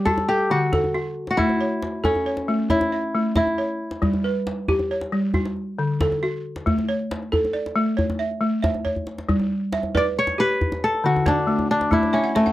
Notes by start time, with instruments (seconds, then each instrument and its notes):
Already playing: kora G4, balafon C#5
0.05 balafon F#4, kora A4, djembe bass
0.18 djembe slap, djembe tone
0.29 kora G4, balafon A4, djembe slap
0.50 balafon D3, kora F#4
0.73 balafon A4, djembe slap, djembe bass
0.84 djembe slap, djembe tone
0.94 balafon F#4
1.27 kora F#4, djembe slap
1.37 balafon A3, kora E4, djembe bass
1.49 djembe tone
1.61 balafon C#5
1.82 djembe slap
2.04 kora C#4, balafon A4, djembe bass
2.15 djembe slap, djembe tone
2.26 balafon C#5
2.37 djembe slap
2.48 balafon A3
2.59 djembe slap
2.70 kora E4, balafon C#5, djembe bass
2.81 djembe slap, djembe tone
2.92 balafon E5, djembe slap
3.15 balafon A3
3.36 kora E4, balafon E5, djembe slap, djembe bass
3.47 djembe slap, djembe tone
3.58 balafon C#5
3.91 djembe slap
4.02 balafon G3, djembe bass
4.14 djembe tone
4.24 balafon B4
4.47 djembe slap
4.68 balafon G4, djembe bass
4.79 djembe slap, djembe tone
4.91 balafon C#5
5.01 djembe slap
5.12 balafon G3
5.23 djembe slap
5.34 balafon F#4, djembe bass
5.45 djembe slap
5.57 djembe slap
5.79 balafon D3
6.01 balafon A4, djembe slap, djembe bass
6.12 djembe slap, djembe tone
6.23 balafon F#4
6.56 djembe slap
6.66 balafon A3, djembe slap, djembe bass
6.78 djembe tone
6.89 balafon C#5, djembe slap
7.01 djembe slap
7.11 djembe slap
7.23 djembe slap
7.32 balafon A4, djembe bass
7.45 djembe tone
7.53 balafon D5, djembe slap
7.66 djembe slap
7.76 balafon A3
7.97 balafon C#5, djembe bass
8.10 djembe slap, djembe tone
8.19 balafon E5, djembe slap
8.31 djembe slap
8.41 balafon A3, djembe slap
8.63 balafon E5, djembe slap, djembe bass
8.74 djembe tone
8.85 balafon C#5, djembe bass
8.96 djembe bass
9.07 djembe slap
9.18 djembe slap
9.29 balafon G3, djembe bass
9.39 djembe tone
9.72 balafon E5, djembe slap
9.83 djembe tone
9.95 balafon B4 D5, kora D5, djembe bass
10.17 kora C#5, djembe slap
10.27 djembe slap, djembe tone
10.38 balafon G4, kora B4, djembe slap
10.50 djembe slap
10.61 djembe bass
10.72 djembe slap, djembe tone
10.84 kora A4
10.95 djembe slap
11.04 balafon D3, kora F#4
11.16 djembe tone
11.26 balafon D4, kora D4, djembe slap, djembe bass
11.47 balafon A3
11.59 djembe tone
11.70 kora D4, djembe slap
11.81 djembe slap
11.91 balafon A3, kora E4, djembe bass
12.03 djembe tone
12.13 kora C#4, balafon E5
12.24 balafon F#5
12.35 kora A3, balafon E5, djembe slap
12.46 balafon F#5, djembe tone